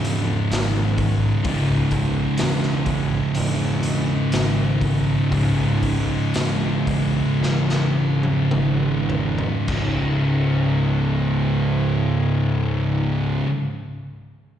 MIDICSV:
0, 0, Header, 1, 4, 480
1, 0, Start_track
1, 0, Key_signature, 4, "minor"
1, 0, Tempo, 938967
1, 743, Time_signature, 4, 2, 24, 8
1, 1225, Tempo, 963082
1, 2185, Tempo, 1013514
1, 3145, Tempo, 1067616
1, 3625, Tempo, 1115242
1, 4105, Tempo, 1169591
1, 4585, Tempo, 1202405
1, 6538, End_track
2, 0, Start_track
2, 0, Title_t, "Distorted electric guitar"
2, 0, Program_c, 0, 30
2, 0, Note_on_c, 0, 37, 97
2, 0, Note_on_c, 0, 44, 100
2, 0, Note_on_c, 0, 49, 106
2, 725, Note_off_c, 0, 37, 0
2, 731, Note_off_c, 0, 44, 0
2, 736, Note_off_c, 0, 49, 0
2, 736, Note_on_c, 0, 37, 85
2, 745, Note_on_c, 0, 44, 91
2, 757, Note_on_c, 0, 49, 96
2, 2638, Note_off_c, 0, 37, 0
2, 2643, Note_off_c, 0, 44, 0
2, 2649, Note_off_c, 0, 49, 0
2, 2650, Note_on_c, 0, 37, 90
2, 2662, Note_on_c, 0, 44, 109
2, 2669, Note_on_c, 0, 49, 112
2, 4566, Note_off_c, 0, 37, 0
2, 4571, Note_off_c, 0, 44, 0
2, 4575, Note_off_c, 0, 49, 0
2, 4576, Note_on_c, 0, 37, 91
2, 4582, Note_on_c, 0, 44, 92
2, 4591, Note_on_c, 0, 49, 96
2, 6074, Note_off_c, 0, 37, 0
2, 6080, Note_off_c, 0, 44, 0
2, 6088, Note_off_c, 0, 49, 0
2, 6538, End_track
3, 0, Start_track
3, 0, Title_t, "Picked electric bass"
3, 0, Program_c, 1, 34
3, 0, Note_on_c, 1, 28, 87
3, 149, Note_off_c, 1, 28, 0
3, 263, Note_on_c, 1, 32, 96
3, 628, Note_off_c, 1, 32, 0
3, 739, Note_on_c, 1, 25, 91
3, 1107, Note_off_c, 1, 25, 0
3, 1228, Note_on_c, 1, 28, 95
3, 1588, Note_off_c, 1, 28, 0
3, 1703, Note_on_c, 1, 28, 88
3, 2070, Note_off_c, 1, 28, 0
3, 2189, Note_on_c, 1, 32, 94
3, 2546, Note_off_c, 1, 32, 0
3, 2659, Note_on_c, 1, 25, 100
3, 3028, Note_off_c, 1, 25, 0
3, 3147, Note_on_c, 1, 28, 98
3, 3510, Note_off_c, 1, 28, 0
3, 3623, Note_on_c, 1, 28, 88
3, 3988, Note_off_c, 1, 28, 0
3, 4103, Note_on_c, 1, 32, 97
3, 4468, Note_off_c, 1, 32, 0
3, 4577, Note_on_c, 1, 25, 88
3, 6059, Note_off_c, 1, 25, 0
3, 6538, End_track
4, 0, Start_track
4, 0, Title_t, "Drums"
4, 23, Note_on_c, 9, 46, 52
4, 74, Note_off_c, 9, 46, 0
4, 264, Note_on_c, 9, 46, 71
4, 272, Note_on_c, 9, 38, 113
4, 315, Note_off_c, 9, 46, 0
4, 323, Note_off_c, 9, 38, 0
4, 501, Note_on_c, 9, 46, 55
4, 503, Note_on_c, 9, 36, 79
4, 552, Note_off_c, 9, 46, 0
4, 554, Note_off_c, 9, 36, 0
4, 739, Note_on_c, 9, 46, 77
4, 741, Note_on_c, 9, 36, 113
4, 790, Note_off_c, 9, 46, 0
4, 792, Note_off_c, 9, 36, 0
4, 976, Note_on_c, 9, 46, 60
4, 981, Note_on_c, 9, 36, 88
4, 1027, Note_off_c, 9, 46, 0
4, 1032, Note_off_c, 9, 36, 0
4, 1214, Note_on_c, 9, 46, 77
4, 1223, Note_on_c, 9, 38, 107
4, 1264, Note_off_c, 9, 46, 0
4, 1273, Note_off_c, 9, 38, 0
4, 1342, Note_on_c, 9, 38, 35
4, 1391, Note_off_c, 9, 38, 0
4, 1456, Note_on_c, 9, 46, 60
4, 1459, Note_on_c, 9, 36, 83
4, 1506, Note_off_c, 9, 46, 0
4, 1509, Note_off_c, 9, 36, 0
4, 1698, Note_on_c, 9, 46, 80
4, 1748, Note_off_c, 9, 46, 0
4, 1939, Note_on_c, 9, 46, 57
4, 1989, Note_off_c, 9, 46, 0
4, 2184, Note_on_c, 9, 46, 73
4, 2192, Note_on_c, 9, 38, 100
4, 2231, Note_off_c, 9, 46, 0
4, 2239, Note_off_c, 9, 38, 0
4, 2418, Note_on_c, 9, 36, 75
4, 2418, Note_on_c, 9, 46, 53
4, 2465, Note_off_c, 9, 36, 0
4, 2466, Note_off_c, 9, 46, 0
4, 2657, Note_on_c, 9, 36, 106
4, 2658, Note_on_c, 9, 46, 73
4, 2704, Note_off_c, 9, 36, 0
4, 2705, Note_off_c, 9, 46, 0
4, 2897, Note_on_c, 9, 36, 86
4, 2897, Note_on_c, 9, 46, 58
4, 2944, Note_off_c, 9, 36, 0
4, 2944, Note_off_c, 9, 46, 0
4, 3140, Note_on_c, 9, 46, 73
4, 3148, Note_on_c, 9, 38, 112
4, 3186, Note_off_c, 9, 46, 0
4, 3193, Note_off_c, 9, 38, 0
4, 3380, Note_on_c, 9, 36, 83
4, 3381, Note_on_c, 9, 46, 54
4, 3425, Note_off_c, 9, 36, 0
4, 3426, Note_off_c, 9, 46, 0
4, 3630, Note_on_c, 9, 38, 58
4, 3673, Note_off_c, 9, 38, 0
4, 3744, Note_on_c, 9, 38, 52
4, 3787, Note_off_c, 9, 38, 0
4, 3976, Note_on_c, 9, 48, 61
4, 4019, Note_off_c, 9, 48, 0
4, 4097, Note_on_c, 9, 47, 81
4, 4138, Note_off_c, 9, 47, 0
4, 4336, Note_on_c, 9, 43, 80
4, 4377, Note_off_c, 9, 43, 0
4, 4455, Note_on_c, 9, 43, 77
4, 4496, Note_off_c, 9, 43, 0
4, 4575, Note_on_c, 9, 49, 83
4, 4578, Note_on_c, 9, 36, 100
4, 4615, Note_off_c, 9, 49, 0
4, 4618, Note_off_c, 9, 36, 0
4, 6538, End_track
0, 0, End_of_file